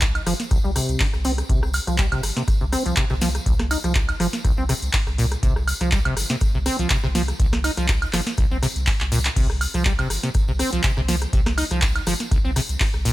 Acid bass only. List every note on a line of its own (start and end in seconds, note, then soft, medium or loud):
0.27 0.34 F3 loud
0.51 0.58 C2 medium
0.64 0.71 G3 medium
0.76 1.02 C3 medium
1.00 1.08 D3 loud
1.25 1.32 C4 loud
1.49 1.60 C3 medium
1.87 1.97 F3 medium
1.99 2.06 G3 medium
2.12 2.21 C3 medium
2.36 2.43 C3 medium
2.61 2.65 C3 medium
2.72 2.83 C4 loud
2.86 2.95 F3 medium
2.97 3.04 C3 medium
3.10 3.14 C3 loud
3.22 3.29 F3 loud
3.46 3.54 C2 medium
3.71 3.78 D#4 medium
3.84 3.93 F3 medium
4.20 4.27 F3 loud
4.45 4.52 C2 medium
4.58 4.64 C4 medium
4.69 4.74 C3 loud
5.18 5.26 A#2 loud
5.43 5.54 C3 medium
5.81 5.90 F3 medium
5.92 5.99 G3 medium
6.05 6.15 C3 medium
6.30 6.36 C3 medium
6.55 6.58 C3 medium
6.66 6.77 C4 loud
6.79 6.88 F3 medium
6.90 6.98 C3 medium
7.04 7.07 C3 loud
7.15 7.22 F3 loud
7.40 7.47 C2 medium
7.64 7.72 D#4 medium
7.78 7.87 F3 medium
8.13 8.21 F3 loud
8.38 8.45 C2 medium
8.51 8.58 C4 medium
8.63 8.67 C3 loud
9.12 9.19 A#2 loud
9.36 9.47 C3 medium
9.74 9.84 F3 medium
9.86 9.93 G3 medium
9.99 10.08 C3 medium
10.24 10.30 C3 medium
10.48 10.52 C3 medium
10.59 10.70 C4 loud
10.73 10.82 F3 medium
10.84 10.91 C3 medium
10.97 11.01 C3 loud
11.09 11.16 F3 loud
11.33 11.40 C3 medium
11.58 11.65 D#4 medium
11.71 11.80 F3 medium
12.07 12.14 F3 loud
12.31 12.39 C2 medium
12.45 12.51 C4 medium
12.56 12.60 C3 loud
13.05 13.13 A#2 loud